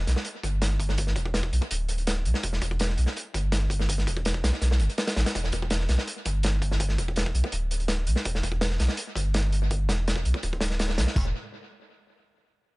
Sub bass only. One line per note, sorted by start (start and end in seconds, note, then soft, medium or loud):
0.07 0.16 B1 loud
0.43 1.17 G1 medium
1.16 1.51 E1 loud
1.53 1.61 B1 loud
1.71 2.27 D1 medium
2.26 2.34 B1 loud
2.44 2.60 E1 loud
2.62 2.97 E1 loud
2.98 3.06 B1 loud
3.34 4.09 G1 medium
4.07 4.42 E1 loud
4.44 4.52 B1 loud
4.62 4.82 B1 medium
4.80 4.88 G1 loud
5.17 5.25 A1 loud
5.35 5.51 E1 loud
5.53 5.88 E1 loud
5.89 5.97 B1 medium
6.26 7.00 G1 medium
6.98 7.33 E1 loud
7.35 7.43 B1 loud
7.53 8.09 D1 medium
8.07 8.16 B1 loud
8.26 8.42 E1 loud
8.43 8.78 E1 loud
8.80 8.88 B1 loud
9.16 9.91 G1 medium
9.89 10.24 E1 loud
10.25 10.34 B1 loud
10.43 11.00 D1 medium
10.98 11.06 B1 loud
11.16 11.33 E1 medium